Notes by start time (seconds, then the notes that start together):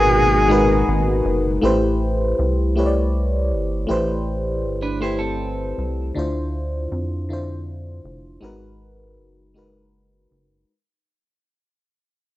Already playing: G#1 A#2 B2 G#3 D#4 F#4 G#4 A#4 B4
0.48 G#3 D#4 F#4 A#4
0.52 B4
0.88 G#1
1.25 F#1
1.62 A1 A3 E4 G4 B4 C5
2.39 C2
2.76 A3 E4 G4 B4 C#5
2.86 D5
3.52 G1
3.87 A1 A3 E4 G4 B4
3.91 C5
4.65 G1
4.82 D4 B4
5.01 A3 E4 G4 B4 C5
5.19 C4 A4
5.78 C2
6.14 D2 D3 D4 E4 F4
6.19 C5
6.92 F2
7.29 D3 D4 E4 F4
7.33 C5
8.04 F1
8.41 G#1 G#3 D#4 F#4 A#4 B4
9.18 F#1
9.54 G#3 D#4 F#4 A#4
9.58 B4
10.31 F#1